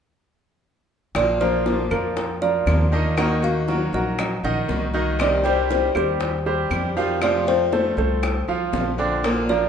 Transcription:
1.15 upright bass A#1, steel-string acoustic guitar F3 A#3 D4 F4, kalimba D5, high bongo, claves
1.40 grand piano F3 F4 A#4, steel-string acoustic guitar A#3 D4 F4, kalimba C5, high bongo
1.66 steel-string acoustic guitar F3 A#3 D4 F4, high bongo
1.91 upright bass F2, grand piano F3 F4 A#4, kalimba A#4, high bongo, claves
2.16 kalimba A#4, muted steel-string acoustic guitar stroke, high bongo
2.42 grand piano F3 F4 A#4, kalimba D5, high bongo
2.66 upright bass D#2, steel-string acoustic guitar F3 A#3 D4 F4, high bongo, low bongo, claves
2.92 grand piano D#3 D#4 D#5, steel-string acoustic guitar A#3 D4 F4
3.17 steel-string acoustic guitar D#3 A#3 D#4 F#4, grand piano D#3 D#4 D#5, kalimba F#5, high bongo, claves
3.42 steel-string acoustic guitar A#3 D#4 F#4, kalimba F5, high bongo
3.68 steel-string acoustic guitar D#3 A#3 D#4 F#4, grand piano F#3 F#4 A#4, high bongo
3.93 upright bass A#1, grand piano F#3 F#4 A#4, kalimba D#5, high bongo
4.18 kalimba D#5, muted steel-string acoustic guitar stroke, high bongo, claves
4.44 upright bass A#1, grand piano D#3 D#4 D#5, kalimba F#5, high bongo
4.68 upright bass C2, steel-string acoustic guitar D#3 A#3 D#4 F#4, high bongo, low bongo
4.94 grand piano D#3 D#4 D#5, steel-string acoustic guitar A#3 D#4 F#4
5.19 steel-string acoustic guitar C3 D#3 G3 C4 G4, kalimba D5, high bongo, claves
5.44 steel-string acoustic guitar D#3 G3 C4 G4, grand piano G3 G4 C5, kalimba C5, high bongo
5.69 steel-string acoustic guitar D#3 G3 C4 G4, kalimba C5, high bongo
5.95 upright bass D#2, grand piano G3 G4 C5, kalimba G4, high bongo, claves
6.20 muted steel-string acoustic guitar stroke, high bongo
6.46 grand piano G3 G4 C5, high bongo
6.70 upright bass F2, steel-string acoustic guitar D#3 G3 C4 G4, high bongo, low bongo, claves
6.97 steel-string acoustic guitar D#3 G3 C4 G4, grand piano F3 F4 F5
7.21 steel-string acoustic guitar C3 F3 A3 C4 F4, grand piano F3 F4 F5, kalimba D5, high bongo, claves
7.47 steel-string acoustic guitar F3 A3 C4 F4, kalimba C5, high bongo
7.72 steel-string acoustic guitar F3 A3 C4 F4, grand piano A3 A4 C5, high bongo
7.97 upright bass C2, grand piano A3 A4 C5, kalimba A4, high bongo
8.23 muted steel-string acoustic guitar stroke, high bongo, claves
8.48 upright bass C2, grand piano F3 F4 F5, high bongo
8.72 upright bass A#1, steel-string acoustic guitar F3 A3 C4 F4, high bongo, low bongo
8.98 grand piano D3 D4 D5, steel-string acoustic guitar F3 A3 C4 F4
9.24 steel-string acoustic guitar F3 A#3 D4 F4, kalimba A#4, high bongo, claves
9.49 grand piano F3 F4 A#4, steel-string acoustic guitar A#3 D4 F4, kalimba D5, high bongo

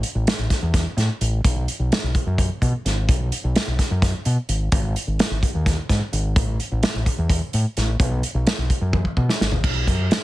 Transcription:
0.03 closed hi-hat
0.15 fingered electric bass A1
0.27 snare, closed hi-hat
0.39 fingered electric bass A1
0.50 kick, snare, closed hi-hat
0.63 fingered electric bass E2
0.74 kick, snare, closed hi-hat
0.97 fingered electric bass A2, snare, closed hi-hat
1.21 fingered electric bass A1, closed hi-hat
1.45 fingered electric bass B1, kick, closed hi-hat
1.68 closed hi-hat
1.80 fingered electric bass B1
1.92 snare, closed hi-hat
2.04 fingered electric bass B1
2.15 kick, closed hi-hat
2.27 fingered electric bass F#2
2.38 kick, closed hi-hat
2.62 fingered electric bass B2, kick, closed hi-hat
2.85 fingered electric bass G#1, snare, closed hi-hat
3.09 fingered electric bass B1, kick, closed hi-hat
3.32 closed hi-hat
3.44 fingered electric bass B1
3.56 snare, closed hi-hat
3.67 fingered electric bass B1
3.79 kick, snare, closed hi-hat
3.91 fingered electric bass F#2
4.02 kick, snare, closed hi-hat
4.25 fingered electric bass B2, closed hi-hat
4.49 fingered electric bass G#1, closed hi-hat
4.72 fingered electric bass G#1, kick, closed hi-hat
4.96 closed hi-hat
5.07 fingered electric bass G#1
5.19 snare, closed hi-hat
5.31 fingered electric bass G#1
5.43 kick, closed hi-hat
5.55 fingered electric bass D#2
5.66 kick, snare, closed hi-hat
5.89 fingered electric bass G#2, kick, snare, closed hi-hat
6.13 fingered electric bass G#1, closed hi-hat
6.36 fingered electric bass A1, kick, closed hi-hat
6.60 closed hi-hat
6.72 fingered electric bass A1
6.83 snare, closed hi-hat
6.95 fingered electric bass A1
7.06 kick, closed hi-hat
7.19 fingered electric bass E2
7.30 kick, closed hi-hat
7.53 fingered electric bass A2, closed hi-hat
7.77 fingered electric bass A1, snare, closed hi-hat
8.00 fingered electric bass B1, kick, closed hi-hat
8.23 closed hi-hat
8.35 fingered electric bass B1
8.47 snare, closed hi-hat
8.58 fingered electric bass B1
8.70 kick, closed hi-hat
8.82 fingered electric bass F#2
8.93 kick, high tom
9.05 kick
9.17 fingered electric bass B2, kick
9.29 snare
9.41 fingered electric bass G#1, snare
9.52 floor tom
9.64 fingered electric bass B1, kick, crash
9.87 fingered electric bass F#2, kick, closed hi-hat
10.11 snare, closed hi-hat

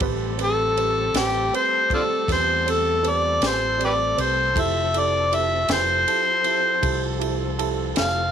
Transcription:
Already playing: horn section C4 G4 A4
0.00 fretless electric bass A1, tonewheel organ G3 A3 C4, upright piano C4 G4 B4, kick, ride
0.37 upright piano C4 G4 B4, ride
0.43 harmonica A4
0.77 upright piano C4 G4 B4, ride
1.14 fretless electric bass A1, upright piano C4 G4 B4, snare, ride
1.18 harmonica G4
1.54 upright piano C4 G4 B4, harmonica C5, ride
1.90 upright piano C4 G4 D5, harmonica D4 F4 A4, kick, ride
2.28 fretless electric bass E2, upright piano C4 G4 B4, kick, snare, ride
2.32 harmonica C5
2.65 upright piano C4 G4 C5, ride
2.70 harmonica A4
3.03 upright piano C4 G4 B4, ride
3.09 harmonica D5
3.41 fretless electric bass A1, upright piano C4 G4 B4, snare, ride
3.47 harmonica C5
3.78 upright piano C4 G4 D5, ride
3.85 harmonica G4 B4 D5
4.17 fretless electric bass C2, upright piano C4 G4 B4, harmonica C5, ride
4.54 fretless electric bass F1, tonewheel organ F3 C4 A4, horn section C4 F4, upright piano E4 G4 A4, kick, ride
4.60 harmonica E5
4.94 upright piano E4 G4 A4, ride
4.99 harmonica D5
5.31 upright piano E4 G4 A4, ride
5.35 harmonica E5
5.69 fretless electric bass F1, upright piano E4 G4 B4, snare, ride
5.73 harmonica C5
6.07 upright piano E4 G4 A4, ride
6.44 upright piano E4 G4 A4, ride
6.81 fretless electric bass C2, upright piano E4 G4 A4, kick, ride
7.19 upright piano E4 G4 A4, ride
7.58 upright piano E4 G4 A4, ride
7.94 fretless electric bass F1, upright piano E4 G4 A4, snare, ride
7.99 harmonica F5

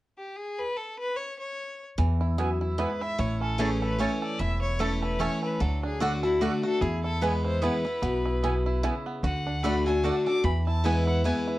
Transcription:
0.18 fiddle G4
0.36 fiddle G#4
0.59 fiddle B4
0.77 fiddle A4
0.99 fiddle B4
1.16 fiddle C#5
1.39 fiddle C#5
1.98 steel-string acoustic guitar E2, upright bass E2, five-string banjo E3
2.21 five-string banjo E4
2.38 steel-string acoustic guitar F#2, mandolin B3 E4 B4 G#5, five-string banjo E4
2.61 five-string banjo E4
2.78 steel-string acoustic guitar G#2, mandolin B3 E4 B4 G#5, five-string banjo E4, fiddle B4
3.01 five-string banjo E4, fiddle E5
3.18 upright bass A1, steel-string acoustic guitar A2, five-string banjo E4, fiddle C#5
3.41 five-string banjo C#4, fiddle A4
3.58 steel-string acoustic guitar E3 A3 C#4 E4, mandolin A3 E4 C#5 A5, five-string banjo A3, fiddle G#4
3.82 five-string banjo A4, fiddle B4
3.99 steel-string acoustic guitar E3 A3 C#4 E4, mandolin A3 E4 C#5 A5, five-string banjo C#4, fiddle C#5
4.22 five-string banjo A4, fiddle D5
4.39 upright bass E1, steel-string acoustic guitar E2, five-string banjo E4, fiddle E5
4.62 fiddle C#5
4.79 steel-string acoustic guitar E3 A3 C#4 E4, mandolin A3 E4 C#5 A5, five-string banjo A3, fiddle A4
5.02 five-string banjo A4, fiddle B4
5.19 steel-string acoustic guitar E3 A3 C#4 E4, mandolin A3 E4 C#5 A5, five-string banjo C#4, fiddle C#5
5.43 five-string banjo A4, fiddle B4
5.60 upright bass D2, steel-string acoustic guitar D3, five-string banjo F#3, fiddle A4
5.83 five-string banjo D4, fiddle G#4
6.00 steel-string acoustic guitar D3 A3 D4 F#4, mandolin A3 F#4 D5 F#5, five-string banjo F#4, fiddle F#4
6.23 steel-string acoustic guitar D4 F#4, fiddle E4, five-string banjo A4
6.41 steel-string acoustic guitar D3 A3 D4 F#4, mandolin A3 F#4 D5 F#5, five-string banjo D4, fiddle F#4
6.63 steel-string acoustic guitar D4 F#4, five-string banjo F#4, fiddle A4
6.81 upright bass E2, steel-string acoustic guitar E2, five-string banjo E4, fiddle G#4
7.04 five-string banjo E4, fiddle A4
7.21 steel-string acoustic guitar E3 G#3 B3 E4, mandolin B3 E4 B4 G#5, five-string banjo B3, fiddle B4
7.45 five-string banjo E4, fiddle C5
7.62 steel-string acoustic guitar E3 G#3 B3 E4, mandolin B3 E4 B4 G#5, five-string banjo E4, fiddle B4
7.85 steel-string acoustic guitar B3 E4, five-string banjo E4
8.02 upright bass B1, steel-string acoustic guitar B2, five-string banjo B3
8.26 five-string banjo E4
8.43 steel-string acoustic guitar B2, mandolin B3 E4 B4 G#5, five-string banjo E4
8.66 five-string banjo E4
8.83 steel-string acoustic guitar C#3, mandolin B3 E4 B4 G#5, five-string banjo E4
9.06 five-string banjo B3
9.23 upright bass D2, steel-string acoustic guitar D3, five-string banjo F#4, fiddle F#5
9.47 five-string banjo D4
9.63 steel-string acoustic guitar D3 A3 D4 F#4, mandolin A3 F#4 D5 F#5, five-string banjo A3, fiddle B5
9.86 steel-string acoustic guitar D4 F#4, five-string banjo A4, fiddle G#5
10.04 steel-string acoustic guitar D3 A3 D4 F#4, mandolin A3 F#4 D5 F#5, five-string banjo D4, fiddle A5
10.26 steel-string acoustic guitar D4 F#4, five-string banjo A4, fiddle D6
10.44 steel-string acoustic guitar E2, upright bass E2, five-string banjo E3, fiddle B5
10.67 five-string banjo E4, fiddle A5
10.84 steel-string acoustic guitar E3 G#3 B3 E4, mandolin B3 E4 B4 G#5, five-string banjo E4, fiddle G#5
11.07 five-string banjo E4, fiddle F#5
11.24 steel-string acoustic guitar E3 G#3 B3 E4, mandolin B3 E4 B4 G#5, five-string banjo E4, fiddle G#5
11.48 five-string banjo E4

